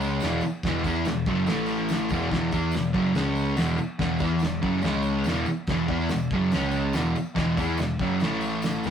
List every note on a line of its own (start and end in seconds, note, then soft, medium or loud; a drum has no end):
0.00 0.19 C#2 medium
0.00 0.22 C#3 medium
0.00 0.22 G#3 medium
0.00 0.22 C#4 medium
0.00 tambourine medium
0.20 0.41 E1 medium
0.20 0.43 E2 medium
0.20 snare loud
0.20 tambourine medium
0.20 crash medium
0.25 0.43 B2 medium
0.25 0.44 E3 loud
0.41 muted picked electric bass stroke soft
0.41 muted distorted electric guitar stroke medium
0.41 tambourine medium
0.63 0.83 E1 medium
0.63 0.84 E2 loud
0.63 0.85 B2 medium
0.63 0.84 E3 loud
0.63 kick loud
0.63 snare loud
0.63 crash medium
0.84 1.04 E2 loud
0.84 1.05 E3 medium
0.84 1.06 B3 medium
0.84 1.06 E4 loud
0.84 kick loud
0.84 tambourine medium
1.05 1.25 E1 medium
1.05 1.23 E2 medium
1.05 1.23 B2 medium
1.05 snare loud
1.05 tambourine medium
1.05 crash medium
1.25 1.46 F#1 loud
1.25 1.47 F#2 medium
1.25 1.47 C#3 medium
1.25 1.47 F#3 loud
1.25 kick loud
1.25 tambourine soft
1.46 2.07 A1 medium
1.46 2.10 A2 medium
1.46 2.10 E3 medium
1.46 2.10 A3 loud
1.46 snare loud
1.46 tambourine medium
1.46 crash medium
1.66 tambourine medium
1.89 snare loud
1.89 tambourine loud
1.89 crash medium
2.09 2.30 E1 medium
2.09 2.30 E2 loud
2.09 2.31 B2 medium
2.09 kick loud
2.09 tambourine medium
2.13 2.31 E3 loud
2.31 2.51 E1 medium
2.31 2.52 E2 medium
2.31 2.52 B2 loud
2.31 2.51 E3 loud
2.31 kick loud
2.31 snare loud
2.31 tambourine soft
2.31 crash medium
2.52 2.72 E2 medium
2.52 2.73 E3 medium
2.52 2.73 B3 loud
2.52 2.74 E4 medium
2.52 kick loud
2.52 tambourine medium
2.72 2.94 E1 medium
2.72 2.91 E2 medium
2.72 2.91 B2 medium
2.72 snare loud
2.72 tambourine medium
2.72 crash medium
2.93 3.14 F#1 medium
2.93 3.14 F#2 medium
2.93 3.13 C#3 medium
2.93 3.15 F#3 medium
2.93 kick loud
3.14 3.55 C#2 loud
3.14 3.56 C#3 loud
3.14 3.57 G#3 loud
3.14 3.58 C#4 medium
3.14 snare loud
3.14 tambourine medium
3.14 crash medium
3.36 tambourine medium
3.56 3.78 E1 medium
3.56 3.76 E2 medium
3.56 3.78 B2 loud
3.56 3.78 E3 loud
3.56 snare loud
3.56 tambourine medium
3.56 crash medium
3.77 muted distorted electric guitar stroke medium
3.77 muted picked electric bass stroke soft
3.77 tambourine medium
3.99 4.19 E1 medium
3.99 4.20 E2 medium
3.99 4.20 B2 medium
3.99 4.19 E3 loud
3.99 kick loud
3.99 snare loud
3.99 tambourine soft
3.99 crash medium
4.19 4.41 E2 loud
4.19 4.41 E3 loud
4.19 4.42 B3 loud
4.19 kick loud
4.19 tambourine medium
4.23 4.42 E4 loud
4.39 4.62 E1 medium
4.39 4.59 E2 medium
4.39 tambourine medium
4.39 crash medium
4.43 4.60 B2 medium
4.43 snare loud
4.62 4.82 F#1 medium
4.62 4.83 F#2 medium
4.62 4.81 C#3 medium
4.62 4.83 F#3 medium
4.62 kick loud
4.82 5.23 C#2 loud
4.82 5.25 C#3 medium
4.82 5.25 G#3 loud
4.82 5.26 C#4 loud
4.82 snare loud
4.82 tambourine medium
4.82 crash medium
5.02 tambourine medium
5.24 5.46 E1 medium
5.24 5.46 E2 medium
5.24 5.48 B2 loud
5.24 snare loud
5.24 tambourine medium
5.24 crash medium
5.28 5.48 E3 loud
5.46 muted distorted electric guitar stroke medium
5.46 tambourine medium
5.67 5.88 E1 medium
5.67 5.89 E2 medium
5.67 kick loud
5.67 snare loud
5.67 tambourine soft
5.67 crash medium
5.71 5.88 B2 loud
5.71 5.87 E3 loud
5.88 6.08 E2 loud
5.88 6.09 E3 medium
5.88 6.09 B3 loud
5.88 6.10 E4 loud
5.88 kick loud
6.08 6.30 E1 medium
6.08 6.27 E2 medium
6.08 6.27 B2 medium
6.08 snare loud
6.08 tambourine medium
6.08 crash soft
6.31 6.51 F#1 medium
6.31 6.52 F#2 medium
6.31 6.51 C#3 medium
6.31 6.53 F#3 loud
6.31 kick loud
6.51 6.92 C#2 loud
6.51 6.94 C#3 medium
6.51 6.94 G#3 loud
6.51 6.95 C#4 loud
6.51 snare loud
6.51 tambourine medium
6.51 crash medium
6.71 tambourine medium
6.93 7.14 E1 medium
6.93 7.14 E2 medium
6.93 7.15 B2 loud
6.93 7.15 E3 loud
6.93 snare loud
6.93 tambourine loud
6.93 crash medium
7.15 muted distorted electric guitar stroke medium
7.15 muted picked electric bass stroke soft
7.15 tambourine medium
7.35 7.56 E1 medium
7.35 7.56 E2 medium
7.35 7.57 B2 medium
7.35 7.57 E3 loud
7.35 kick loud
7.35 snare loud
7.35 tambourine soft
7.35 crash medium
7.57 7.77 E2 loud
7.57 7.78 E3 loud
7.57 7.78 B3 medium
7.57 7.79 E4 loud
7.57 kick loud
7.57 tambourine medium
7.77 7.98 E1 medium
7.77 7.95 E2 medium
7.77 7.95 B2 medium
7.77 snare loud
7.77 tambourine medium
7.77 crash medium
7.99 8.19 F#1 medium
7.99 8.20 F#2 medium
7.99 8.21 C#3 medium
7.99 8.21 F#3 medium
7.99 kick loud
7.99 tambourine soft
8.20 8.80 A1 medium
8.20 8.84 A2 loud
8.20 8.84 E3 medium
8.20 8.84 A3 loud
8.20 snare loud
8.20 tambourine medium
8.20 crash medium
8.41 tambourine medium
8.62 snare loud
8.62 tambourine loud
8.62 crash medium
8.83 8.90 E1 medium
8.83 8.90 E2 medium
8.83 8.90 B2 medium
8.83 8.90 E3 loud
8.83 snare medium
8.83 tambourine medium